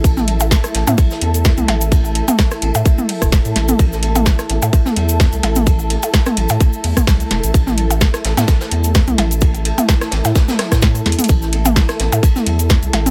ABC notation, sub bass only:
X:1
M:4/4
L:1/16
Q:"Swing 16ths" 1/4=128
K:C
V:1 name="Sub bass" clef=bass
A,,,4 z2 A,,, A,, z2 E,,2 z C,, A,,,2- | A,,,2 z4 A,,, A,, z3 E,,, z A,, A,,, z | A,,,4 z2 A,,, A,, z2 E,,2 z C,, A,,,2- | A,,,2 z4 A,,, A,, z2 E,, z C,, z E,,, A,,, |
A,,,4 z2 A,,, A,, z2 E,,2 z C,, A,,,2- | A,,,2 z4 A,,, A,, z3 A,,2 z E,, z | A,,,4 z2 A,,, A,, z2 E,,2 z C,, A,,,2 |]